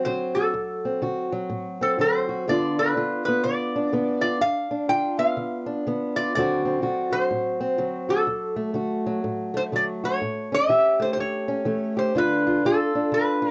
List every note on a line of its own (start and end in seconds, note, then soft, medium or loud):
0.00 0.52 C4 medium
0.00 0.35 F#4 medium
0.05 0.50 D3 medium
0.05 1.31 F#3 medium
0.05 0.33 C5 medium
0.35 0.52 F#4 medium
0.35 0.98 A4 medium
0.54 0.98 D2 medium
0.85 1.80 C4 soft
1.02 1.46 D3 medium
1.02 2.28 F#4 medium
1.32 1.98 F#3 medium
1.49 1.94 A2 medium
1.81 2.45 C4 medium
1.81 1.99 A4 medium
1.98 2.43 D3 medium
1.98 2.47 F#3 medium
1.98 2.50 C5 medium
2.29 2.45 F#4 medium
2.47 2.92 G2 medium
2.47 2.96 D3 medium
2.47 3.28 B3 medium
2.47 2.78 D4 medium
2.47 2.97 F4 medium
2.47 2.79 D5 medium
2.79 3.75 D4 medium
2.79 3.24 B4 medium
2.97 3.41 D3 medium
2.97 4.21 F4 medium
3.25 3.92 B3 medium
3.25 3.42 B4 medium
3.44 3.89 D3 medium
3.44 4.20 D5 medium
3.76 4.70 D4 medium
3.92 4.37 D3 medium
3.92 4.39 B3 medium
4.21 4.38 F4 medium
4.21 4.41 D5 medium
4.41 4.85 G2 medium
4.41 4.86 F5 loud
4.71 5.66 D4 medium
4.89 5.33 D3 medium
4.89 6.16 F4 medium
4.89 5.17 G5 loud
5.18 5.85 B3 medium
5.18 6.11 F5 medium
5.37 5.81 D3 medium
5.66 6.38 D4 medium
5.87 6.31 D3 medium
5.87 6.32 B3 medium
6.16 6.32 F4 medium
6.16 6.34 D5 medium
6.35 6.79 D2 medium
6.35 6.82 D3 medium
6.35 7.12 F#3 medium
6.35 6.65 C4 medium
6.35 6.82 F#4 medium
6.35 7.12 D5 medium
6.65 7.59 C4 medium
6.82 7.27 D3 medium
6.82 8.08 F#4 medium
7.12 7.77 F#3 medium
7.12 8.12 C5 medium
7.31 7.75 A2 medium
7.60 8.25 C4 medium
7.78 8.23 D3 medium
7.78 9.05 F#3 medium
8.09 8.25 F#4 medium
8.09 8.72 A4 medium
8.27 8.72 D2 medium
8.56 9.53 A3 medium
8.74 9.19 D3 medium
8.74 10.02 F#4 medium
9.06 9.72 F#3 medium
9.24 9.69 A2 medium
9.54 10.51 A3 medium
9.54 9.62 C5 medium
9.72 10.17 D3 medium
9.72 10.21 F#3 medium
9.72 9.83 D5 medium
10.04 10.19 F#4 medium
10.04 10.53 C#5 medium
10.22 10.66 A2 medium
10.52 11.47 C#4 medium
10.52 11.02 E5 loud
10.69 11.14 E3 medium
10.69 11.96 G4 medium
11.00 11.65 A3 medium
11.00 11.12 C5 medium
11.13 11.62 E2 medium
11.13 11.18 C5 medium
11.20 11.98 C#5 medium
11.48 12.12 C#4 medium
11.65 12.10 E3 medium
11.65 12.12 A3 medium
11.97 12.13 G4 medium
11.97 12.16 C5 medium
12.15 12.59 G2 medium
12.15 12.63 D3 medium
12.15 12.95 D4 medium
12.15 12.45 F4 medium
12.15 12.66 B4 loud
12.47 12.64 F4 medium
12.65 13.09 D3 medium
12.65 13.41 F4 medium
12.65 13.14 A4 medium
12.95 13.51 D4 medium
13.12 13.51 D3 medium
13.12 13.51 B4 medium
13.42 13.51 F4 medium